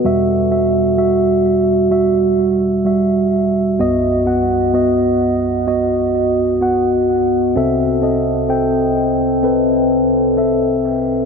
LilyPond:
<<
  \new Staff \with { instrumentName = "Tine electric piano" } { \time 4/4 \key e \minor \tempo 4 = 64 <g fis' e''>8 <g fis' e''>8 <g fis' e''>4 <g fis' e''>4 <g fis' e''>4 | <b fis' dis''>8 <b fis' fis''>8 <b fis' dis''>4 <b fis' dis''>4 <b fis' fis''>4 | <c' a' e''>8 <c' a' dis''>8 <c' a' g''>4 <c' a' b'>4 <c' a' e''>4 | }
  \new Staff \with { instrumentName = "Tine electric piano" } { \clef bass \time 4/4 \key e \minor <e, b,>1 | <b,, fis,>1 | <c, c>1 | }
>>